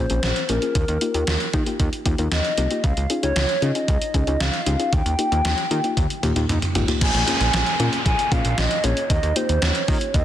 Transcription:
Already playing: soft synth lead C5
0.10 analog synth bass A#1, synth pluck A#3 C#4 F4 G#4, closed hi-hat
0.23 analog synth bass A#1, snare, closed hi-hat
0.36 closed hi-hat
0.49 analog synth bass A#1, synth pluck A#3 C#4 F4 G#4, soft synth lead A#4, closed hi-hat
0.62 synth pluck A#3 C#4 F4 G#4, closed hi-hat
0.75 analog synth bass D#2, kick, closed hi-hat
0.88 analog synth bass D#2, closed hi-hat
1.01 synth pluck A#3 D#4 F4 G4, closed hi-hat
1.14 analog synth bass D#2, synth pluck A#3 D#4 F4 G4, closed hi-hat
1.27 analog synth bass D#2, snare, closed hi-hat
1.40 closed hi-hat
1.53 analog synth bass D#3, synth pluck A#3 D#4 F4 G4, kick, closed hi-hat
1.66 synth pluck A#3 D#4 F4 G4, closed hi-hat
1.80 analog synth bass D#2, kick, closed hi-hat
1.93 closed hi-hat
2.06 analog synth bass D#2, synth pluck A#3 D#4 F4 G4, kick, closed hi-hat
2.18 analog synth bass D#2, synth pluck A#3 D#4 F4 A#4, closed hi-hat
2.32 analog synth bass D#2, soft synth lead D#5, snare, closed hi-hat
2.45 closed hi-hat
2.58 analog synth bass C2, synth pluck A#3 D#4 F4 G4, closed hi-hat
2.71 synth pluck A#3 D#4 F4 G4, closed hi-hat
2.84 analog synth bass C#2, soft synth lead F5, kick, closed hi-hat
2.97 analog synth bass C#2, closed hi-hat
3.10 synth pluck C#4 D#4 F4 G#4, closed hi-hat
3.23 analog synth bass C#2, synth pluck C#4 D#4 F4 G4, soft synth lead C#5, closed hi-hat
3.36 analog synth bass C#2, snare, closed hi-hat
3.49 closed hi-hat
3.62 analog synth bass C#3, synth pluck C#4 D#4 F4 G#4, soft synth lead D#5, closed hi-hat
3.75 synth pluck C#4 D#4 F4 G#4, closed hi-hat
3.88 analog synth bass C#2, kick, closed hi-hat
4.02 closed hi-hat
4.14 analog synth bass C#2, synth pluck C#4 D#4 F4 G#4, kick, closed hi-hat
4.27 analog synth bass C#2, synth pluck C#4 D#4 F4 G#4, closed hi-hat
4.40 analog synth bass C#2, soft synth lead F5, snare, closed hi-hat
4.54 closed hi-hat
4.66 analog synth bass C#2, synth pluck C#4 D#4 F4 G4, closed hi-hat
4.80 synth pluck C#4 D#4 F4 G#4, closed hi-hat
4.93 analog synth bass D#2, soft synth lead G5, kick, closed hi-hat
5.06 analog synth bass D#2, closed hi-hat
5.19 synth pluck A#3 D#4 F4 G4, closed hi-hat
5.32 analog synth bass D#2, synth pluck A#3 D#4 F4 G4, closed hi-hat
5.45 analog synth bass D#2, snare, closed hi-hat
5.58 closed hi-hat
5.71 analog synth bass D#3, synth pluck A#3 D#4 F4 G4, closed hi-hat
5.84 synth pluck A#3 D#4 F4 G4, closed hi-hat
5.97 analog synth bass D#2, kick, closed hi-hat, high tom
6.10 closed hi-hat
6.23 analog synth bass D#2, synth pluck A#3 D#4 F4 G4, closed hi-hat, mid tom
6.36 analog synth bass D#2, synth pluck A#3 D#4 F4 G4, closed hi-hat, mid tom
6.49 analog synth bass D#2, closed hi-hat, mid tom
6.62 closed hi-hat, mid tom
6.75 analog synth bass G#1, synth pluck A#3 D#4 F4 G4, closed hi-hat, floor tom
6.88 synth pluck A#3 D#4 F4 G4, closed hi-hat, floor tom
7.01 analog synth bass A#1, soft synth lead G#5, kick, closed hi-hat, crash, downlifter
7.14 analog synth bass A#1, closed hi-hat
7.27 synth pluck A#3 C#4 F4 G#4, closed hi-hat
7.41 analog synth bass A#1, closed hi-hat
7.53 analog synth bass A#1, snare, closed hi-hat
7.66 closed hi-hat
7.80 analog synth bass A#2, synth pluck A#3 C#4 F4 A#4, closed hi-hat
7.93 closed hi-hat
8.06 analog synth bass A#1, soft synth lead G#5, kick, closed hi-hat
8.19 closed hi-hat
8.32 analog synth bass A#1, synth pluck A#3 C#4 F4 G#4, soft synth lead F5, kick, closed hi-hat
8.45 analog synth bass A#1, closed hi-hat
8.57 analog synth bass A#1, soft synth lead D#5, snare, closed hi-hat
8.71 closed hi-hat
8.84 analog synth bass A#1, synth pluck A#3 C#4 F4 G#4, soft synth lead C#5, closed hi-hat
8.97 closed hi-hat
9.10 analog synth bass D#2, soft synth lead D#5, kick, closed hi-hat
9.23 analog synth bass D#2, closed hi-hat
9.36 synth pluck A#3 D#4 F4 G4, soft synth lead C5, closed hi-hat
9.49 analog synth bass D#2, closed hi-hat
9.62 analog synth bass D#2, soft synth lead C#5, snare, closed hi-hat
9.75 closed hi-hat
9.88 analog synth bass D#3, synth pluck A#3 D#4 F4 G4, kick, open hi-hat
10.01 closed hi-hat
10.14 analog synth bass D#2, soft synth lead D#5, kick, closed hi-hat

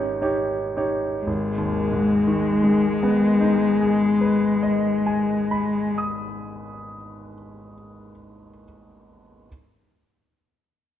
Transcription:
Already playing: grand piano G#1 D#4 G4 C#5
0.21 grand piano D#4 G4 C#5
0.77 grand piano D#4 G4 C#5
1.24 grand piano G#1, cello G#3
1.58 grand piano D#2
1.92 grand piano G#2
2.27 grand piano D#3
2.64 grand piano G#3
3.03 grand piano B3
3.40 grand piano D#4
3.81 grand piano G#4
4.21 grand piano B4
4.63 grand piano D#5
5.06 grand piano G#5
5.51 grand piano B5
5.98 grand piano D#6

